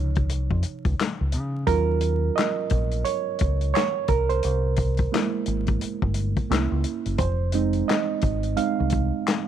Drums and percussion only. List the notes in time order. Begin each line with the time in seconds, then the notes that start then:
0.15 kick, closed hi-hat
0.29 closed hi-hat
0.51 kick
0.63 closed hi-hat
0.85 kick, closed hi-hat
1.00 snare, clap, closed hi-hat
1.32 closed hi-hat
1.67 kick, closed hi-hat
2.01 closed hi-hat
2.38 snare, clap, closed hi-hat
2.70 kick, closed hi-hat
2.91 closed hi-hat
3.05 closed hi-hat
3.39 kick, closed hi-hat
3.61 closed hi-hat
3.76 snare, clap, closed hi-hat
4.08 kick, closed hi-hat
4.30 closed hi-hat
4.43 closed hi-hat
4.76 kick, closed hi-hat
4.97 kick, closed hi-hat
5.14 snare, clap, closed hi-hat
5.46 closed hi-hat
5.67 kick, closed hi-hat
5.81 closed hi-hat
6.02 kick
6.14 closed hi-hat
6.36 kick, closed hi-hat
6.52 snare, clap, closed hi-hat
6.84 closed hi-hat
7.06 closed hi-hat
7.18 kick, closed hi-hat
7.52 closed hi-hat
7.73 closed hi-hat
7.89 snare, clap, closed hi-hat
8.21 kick, closed hi-hat
8.43 closed hi-hat
8.57 closed hi-hat
8.90 kick, closed hi-hat
9.27 snare, clap, closed hi-hat